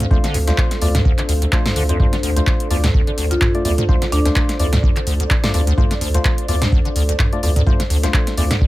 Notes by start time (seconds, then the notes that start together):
Already playing: D4 A4 C5 F5
0.00 D2, closed hi-hat, mid tom
0.11 D2 A3 D4 F4 C5, kick
0.24 D3, snare, closed hi-hat
0.34 D2, open hi-hat
0.48 D2 A3 D4 F4 C5, snare, closed hi-hat
0.58 kick, clap
0.71 snare, closed hi-hat
0.82 D2 E2 A3 D4 F4 D5, open hi-hat
0.95 D2, snare, closed hi-hat, mid tom
1.05 D2, kick
1.18 D3, clap, closed hi-hat
1.29 D2, open hi-hat
1.42 C2, closed hi-hat
1.52 A3 D4 F4 C5, kick, clap
1.66 snare, closed hi-hat, mid tom
1.76 D2 D3, open hi-hat
1.89 F2 A3 D4 F4 C5, closed hi-hat
2.00 D2 A3 D4 F4 C5 D5, kick, mid tom
2.13 D3, snare, closed hi-hat
2.23 D2, open hi-hat
2.36 D2 A3 D4 F4 C5, closed hi-hat
2.47 kick, clap
2.60 closed hi-hat
2.71 D2 E2 A3 D4 F4 D5, open hi-hat
2.84 D2, snare, closed hi-hat, mid tom
2.94 D2, kick
3.07 D3, closed hi-hat
3.18 D2, open hi-hat
3.31 D2 F4, closed hi-hat
3.41 kick, clap, mid tom
3.55 A3 D4 F4 D5, closed hi-hat
3.65 D2 E2 A3 D4 F4 D5, open hi-hat
3.78 D2, closed hi-hat, mid tom
3.89 D2 A3 D4 F4 C5, kick
4.02 D3, snare, closed hi-hat
4.12 D2 D4, open hi-hat
4.25 D2 A3 D4 F4 C5, snare, closed hi-hat
4.36 kick, clap
4.49 snare, closed hi-hat
4.59 D2 E2 A3 D4 F4 D5, open hi-hat
4.73 D2, snare, closed hi-hat, mid tom
4.83 D2, kick
4.96 D3, clap, closed hi-hat
5.07 D2, open hi-hat
5.20 D2, closed hi-hat
5.30 kick, clap
5.44 A3 D4 F4 D5, snare, closed hi-hat, mid tom
5.54 D2 E2 A3 D4 F4 D5, open hi-hat
5.67 D2, closed hi-hat
5.78 D2 A3 D4 F4 C5, kick, mid tom
5.91 D3, snare, closed hi-hat
6.01 D2, open hi-hat
6.14 D2 A3 D4 F4 C5, closed hi-hat
6.25 kick, clap
6.38 closed hi-hat
6.48 D2 E2 A3 D4 F4 D5, open hi-hat
6.62 D2, snare, closed hi-hat, mid tom
6.72 D2, kick
6.85 D3, closed hi-hat
6.96 D2, open hi-hat
7.09 D2, closed hi-hat
7.19 kick, clap, mid tom
7.33 A3 D4 F4 D5, closed hi-hat
7.43 D2 E2 A3 D4 F4 D5, open hi-hat
7.56 D2, closed hi-hat, mid tom
7.67 D2 A3 D4 F4 C5, kick, mid tom
7.80 D3, snare, closed hi-hat
7.90 D2, open hi-hat
8.03 D2 A3 D4 F4 C5, snare, closed hi-hat
8.14 kick, clap
8.27 snare, closed hi-hat
8.38 D2 E2 A3 D4 F4 D5, open hi-hat
8.51 D2, snare, closed hi-hat, mid tom
8.61 D2, kick